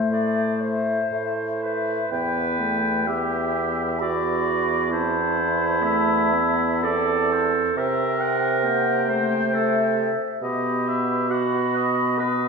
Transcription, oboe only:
Already playing: C5
0.62 C5
1.63 C5
2.12 G5
3.08 E5
4.02 D5
4.92 C5
5.83 E5
6.84 D5
7.32 C5
7.78 E5
8.21 F#5
8.65 G5
10.43 D#5
10.88 E5
11.31 F#5
11.76 D#5
12.21 D#5

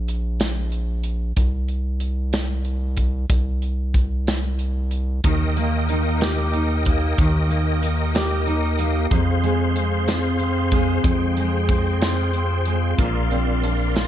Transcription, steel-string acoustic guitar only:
5.24 D#3
5.57 A#3
5.90 D#4
6.22 G4
6.54 D#4
6.86 A#3
7.19 D#3
7.50 A#3
7.82 D#4
8.15 G4
8.47 D#4
8.79 A#3
9.11 F2
9.43 G#3
9.75 C4
10.08 F4
10.40 C4
10.72 G#3
11.04 F2
11.37 G#3
11.69 C4
12.02 F4
12.34 C4
12.67 G#3
12.98 A#2
13.32 C4
13.64 D4
13.96 F4

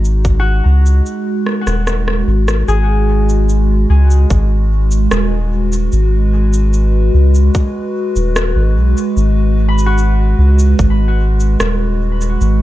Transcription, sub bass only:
Already playing: G#1
0.65 C#2
1.67 D#1
2.27 G#1
2.68 G#1
3.90 C#2
4.30 G#1
5.11 D#1
5.93 G#1
7.14 C#2
8.16 D#1
8.56 G#1
8.76 B1
9.17 G#1
10.38 C#2
10.79 G#1
11.60 D#1
12.41 G#1

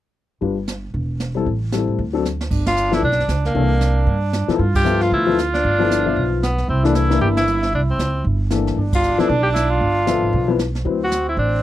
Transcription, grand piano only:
0.41 G3 D4 F4 B4
1.35 G3 C4 E4 A4
1.72 G3 C4 E4 A4
2.13 F#3 C4 D4 A4
2.92 F3 B3 E4 A4
3.54 E3 A#3 D4 A4
4.48 F3 B3 E4 A4
4.85 F3 B3 A4 E5
5.27 F3 B3 E4 A4
5.79 F3 B3 E4 A4
6.06 F3 B3 B4 E5
6.83 E3 A#3 D4 A4
7.09 E3 A#3 D4 A#4
8.50 E3 A#3 D4 A4
9.18 F3 B3 E4 A4
10.07 F3 B3 A4 E5
10.48 F3 B3 E4 B4
10.85 F#3 C4 E4 B4

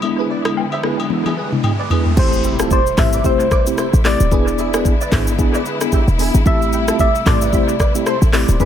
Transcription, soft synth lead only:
2.19 C5
2.72 C5
2.99 E5
3.26 C5
4.06 D5
6.47 E5
7.00 E5
7.27 D5
8.07 C5
8.34 D5

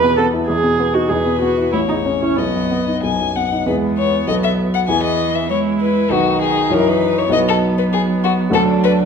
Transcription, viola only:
Already playing: B4
0.17 A4
0.48 G#4
0.94 F#4
1.09 G#4
1.41 F#4
1.72 E4
1.88 D#4
2.21 C#4
2.37 B3
3.66 B3
4.88 B3
5.50 E4
6.12 D#4
7.32 B3
8.53 D4

